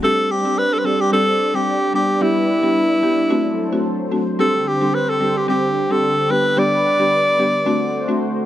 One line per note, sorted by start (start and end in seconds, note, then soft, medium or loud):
0.02 0.41 G3 medium
0.02 1.92 G3 medium
0.02 0.41 C4 medium
0.02 4.35 D4 medium
0.02 0.41 D4 medium
0.02 0.42 G4 loud
0.02 0.33 A4 loud
0.02 1.92 C5 medium
0.02 3.27 D5 medium
0.31 0.60 G4 medium
0.45 0.81 G3 medium
0.45 0.82 C4 medium
0.45 0.82 D4 medium
0.45 0.82 G4 medium
0.59 0.75 B4 loud
0.74 0.81 A4 medium
0.79 0.87 B4 medium
0.84 1.10 G3 medium
0.84 1.10 C4 medium
0.84 1.10 D4 medium
0.84 1.10 G4 medium
0.84 1.02 A4 medium
1.01 1.12 G4 medium
1.12 1.33 G3 medium
1.12 1.33 C4 medium
1.12 1.33 D4 medium
1.12 1.33 G4 medium
1.12 1.57 A4 loud
1.54 1.91 G3 medium
1.54 1.91 C4 medium
1.54 1.91 D4 medium
1.54 1.91 G4 medium
1.54 1.94 G4 medium
1.93 2.19 G3 medium
1.93 3.29 G3 medium
1.93 2.19 B3 medium
1.93 2.19 D4 medium
1.93 2.19 G4 medium
1.93 2.24 G4 medium
1.93 3.29 B4 medium
2.21 2.59 G3 medium
2.21 2.60 B3 medium
2.21 2.60 D4 medium
2.21 3.85 E4 medium
2.21 2.60 G4 loud
2.63 3.00 G3 medium
2.63 3.00 B3 medium
2.63 3.00 D4 medium
2.63 3.00 G4 medium
3.03 3.28 G3 medium
3.03 3.28 B3 medium
3.03 3.28 D4 medium
3.03 3.28 G4 medium
3.30 4.38 F#3 medium
3.30 3.51 A3 medium
3.30 3.51 C4 medium
3.30 3.51 D4 medium
3.30 3.51 F#4 medium
3.30 4.38 A4 medium
3.30 6.27 C5 medium
3.72 4.09 A3 medium
3.72 4.09 C4 medium
3.72 4.09 D4 medium
3.72 4.09 F#4 medium
4.12 4.37 A3 medium
4.12 4.37 C4 medium
4.12 4.37 D4 medium
4.12 4.37 F#4 medium
4.39 8.46 D3 medium
4.39 4.78 G3 medium
4.39 6.28 C4 medium
4.39 4.78 C4 medium
4.39 4.78 D4 medium
4.39 7.63 G4 medium
4.39 4.78 G4 loud
4.39 4.69 A4 medium
4.68 4.96 G4 medium
4.81 5.18 G3 medium
4.81 5.18 C4 medium
4.81 5.18 D4 medium
4.81 5.18 G4 medium
4.95 5.11 B4 medium
5.10 5.39 A4 medium
5.21 5.46 G3 medium
5.21 5.46 C4 medium
5.21 5.46 D4 medium
5.21 5.46 G4 medium
5.37 5.49 G4 medium
5.48 5.69 G3 medium
5.48 5.69 C4 medium
5.48 5.69 D4 medium
5.48 5.69 G4 medium
5.48 5.93 G4 medium
5.90 6.27 G3 medium
5.90 6.27 C4 medium
5.90 6.27 D4 medium
5.90 6.27 G4 medium
5.90 6.33 A4 medium
6.30 6.55 G3 medium
6.30 6.55 B3 medium
6.30 7.65 B3 medium
6.30 6.55 D4 medium
6.30 6.55 G4 medium
6.30 7.65 B4 medium
6.30 6.60 B4 medium
6.57 6.96 G3 loud
6.57 6.96 B3 medium
6.57 6.96 D4 medium
6.57 6.96 G4 loud
6.57 8.22 D5 loud
6.99 7.36 G3 medium
6.99 7.36 B3 medium
6.99 7.36 D4 medium
6.99 7.36 G4 medium
7.39 7.64 G3 medium
7.39 7.64 B3 medium
7.39 7.64 D4 medium
7.39 7.64 G4 medium
7.66 7.87 A3 medium
7.66 8.46 A3 medium
7.66 7.87 C4 medium
7.66 7.88 D4 medium
7.66 8.46 F#4 medium
7.66 7.88 F#4 loud
7.66 8.46 C5 medium
8.08 8.45 A3 medium
8.08 8.45 C4 medium
8.08 8.45 D4 medium
8.08 8.45 F#4 medium